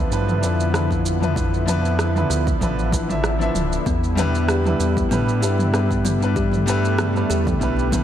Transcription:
Already playing: D3 F3 B3 E4
0.10 G2 F3 D4 E4 B4, shaker
0.28 mid tom, shaker
0.40 F2 F3 D4 E4 B4, shaker
0.60 shaker
0.72 F3 D4 E4 B4, cross-stick, mid tom, shaker
0.91 kick, shaker
1.06 shaker
1.20 F3 D4 E4 B4, mid tom, shaker
1.36 kick, shaker
1.54 shaker
1.66 F3 D4 E4 B4, mid tom, shaker
1.85 shaker
1.99 cross-stick, shaker
2.14 F3 D4 E4 B4, mid tom, shaker
2.30 D2, cross-stick, shaker
2.47 kick, shaker
2.59 A1 F3 D4 E4 B4, kick, mid tom, shaker
2.79 shaker
2.91 F3 D4 E4 B4, kick, shaker
3.08 F3 D4 E4 E5, mid tom, shaker
3.24 cross-stick, shaker
3.38 F3 D4 E4 E5, shaker
3.55 D1, mid tom, shaker
3.73 shaker
3.86 E2 G3 B3, kick, shaker
4.04 shaker
4.15 G3 B3 D4 E4 B4, mid tom, shaker
4.35 shaker
4.48 G4, cross-stick, shaker
4.64 G3 D4 E4 B4, mid tom, shaker
4.80 E2 B3, shaker
4.97 kick, shaker
5.09 A2 G3 B3 D4 E4 B4, mid tom, shaker
5.29 shaker
5.40 G2 G3 D4 E4 G4 B4, shaker
5.59 mid tom, shaker
5.71 G3 B3 D4 E4 B4, cross-stick, shaker
5.91 kick, shaker
6.05 B3, mid tom, shaker
6.20 G3 D4 E4 B4, shaker
6.36 A3 G4, kick, shaker
6.53 mid tom, shaker
6.66 G3 B3 D4 E4 B4, shaker
6.85 shaker
6.98 B3, cross-stick, mid tom, shaker
7.14 G3 D4 E4 B4, shaker
7.30 E2 G4, cross-stick, shaker
7.47 kick, mid tom, shaker
7.59 B1 G3 B3 D4 E4 B4, kick, shaker
7.79 shaker
7.91 G3 B3 D4 E4 B4, kick, mid tom, shaker

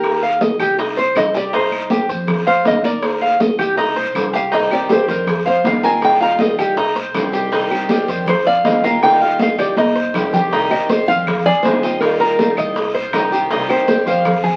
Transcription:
Already playing: D#2 G4 A#4
0.03 high bongo, high conga, long guiro, claves
0.22 F5, high bongo, high conga
0.41 D#5, high bongo, high conga, short guiro
0.59 C2 G4, high bongo, high conga, short guiro, claves
0.78 D#4, high bongo, high conga, long guiro
0.96 C5, high conga
1.15 C2 D#5, high bongo, low bongo, high conga, short guiro, claves
1.34 G4 D5, high bongo, short guiro
1.53 D#4 C5, high bongo, high conga, long guiro
1.71 high conga, claves
1.90 G4, high bongo, high conga, short guiro
2.09 F2 C5, high conga, short guiro
2.27 high bongo, high conga, low conga, long guiro, claves
2.46 C5 F5, high conga
2.65 D#2 D#5, high bongo, low bongo, high conga, short guiro
2.84 A#4 D5, high conga, short guiro
3.02 C5, high bongo, high conga, long guiro, claves
3.21 F5, high bongo, high conga
3.40 D#5, high bongo, high conga, short guiro
3.59 C2 G4, high bongo, high conga, short guiro, claves
3.77 D#4, high bongo, high conga, long guiro
3.96 C5, high conga
4.15 C2, high bongo, low bongo, high conga, short guiro, claves
4.33 G4 F5, high bongo, short guiro
4.52 C3 D#3 G3 C4 D#4 G4 D#5, high bongo, high conga, long guiro
4.71 D#3 G3 C4 G4 D5, high conga, claves
4.89 D#3 G3 C4 G4 C5, high bongo, high conga, short guiro
5.08 F2 A#4 C5, high conga, short guiro
5.27 G#4, muted steel-string acoustic guitar stroke, high bongo, high conga, low conga, long guiro, claves
5.45 C5 F5, high conga
5.64 D#2 F3 G#3 C4 F4 F5, high bongo, low bongo, high conga, short guiro
5.83 F3 G#3 C4 F4 A#4 G#5, short guiro
6.02 D#3 G3 D#4 F4 G5, high bongo, high conga, long guiro, claves
6.20 G3 D#4 F4 F5 A#5, high bongo, high conga
6.39 D#3 G3 D#4 F4 D#5, high bongo, high conga, short guiro
6.58 C2 G4, high bongo, short guiro, claves
6.76 D#4, muted steel-string acoustic guitar stroke, high bongo, high conga, long guiro
6.95 C5, high conga
7.14 C2 D#3 G3 C4 G4, high bongo, low bongo, high conga, short guiro, claves
7.32 D#3 G3 C4 G4, high bongo, short guiro
7.51 C3 D#3 G3 C4 D#4 G4, high bongo, high conga, long guiro
7.70 D#3 G3 C4 G4, high conga, claves
7.89 D#3 G3 C4 G4, high bongo, high conga, short guiro
8.08 F2 C5, high conga, short guiro
8.26 C5, muted steel-string acoustic guitar stroke, high bongo, high conga, low conga, long guiro, claves
8.46 D5 F5, high conga
8.64 D#2 F3 G#3 C4 F4 D#5, high bongo, low bongo, high conga, short guiro
8.83 F3 G#3 C4 F4 A#4 F5, high conga, short guiro
9.02 D#3 G3 D#4 F4 G5, high bongo, high conga, long guiro, claves
9.20 G3 D#4 F4 F5, high bongo, high conga
9.39 D#3 G3 D#4 F4 D#5 F5, high bongo, high conga, short guiro
9.58 C2 G4 D5, high bongo, high conga, short guiro, claves
9.77 D#4 D#5, muted steel-string acoustic guitar stroke, high bongo, high conga, long guiro
9.96 C5
10.14 C2 D#3 G3 C4 G4, high bongo, low bongo, low conga, short guiro, claves
10.33 D#3 G3 C4 G4, high bongo, low conga, short guiro
10.52 C3 D#3 G3 C4 D#4 G4, high bongo, high conga, long guiro
10.71 D#3 G3 C4 G4 D#5, high conga, claves
10.89 D#3 G3 C4 G4 C5, high bongo, high conga, short guiro
11.08 F2 F5, high conga, short guiro
11.27 muted steel-string acoustic guitar stroke, high bongo, high conga, low conga, long guiro, claves
11.46 G#4 D5, high conga, low conga
11.63 D#2 F3 G#3 C4 F4 C5, high bongo, low bongo, high conga, short guiro
11.83 F3 G#3 C4 F4 D#5, short guiro
12.00 D#3 G3 D#4 F4 A#4, high bongo, high conga, long guiro, claves
12.20 G3 D#4 F4 A#4, high conga
12.39 D#3 G3 D#4 F4, high bongo, high conga, short guiro
12.57 C2 D#5, high bongo, high conga, short guiro, claves
12.76 muted steel-string acoustic guitar stroke, high bongo, high conga, long guiro
12.94 C5, high conga
13.13 C2 D#3 G3 C4 D#4 G4, high bongo, low bongo, high conga, short guiro, claves
13.32 D#3 G3 C4 G4, high bongo, short guiro
13.50 C3 D#3 G3 C4 D#4 G4, high bongo, high conga, long guiro
13.69 D#3 G3 C4 G4 C5, high conga, claves
13.87 D#3 G3 C4 G4 C5, high bongo, high conga, short guiro
14.06 F2 C5 F5, high conga, short guiro
14.25 muted steel-string acoustic guitar stroke, high bongo, high conga, low conga, long guiro, claves
14.44 G#4, high conga, low conga

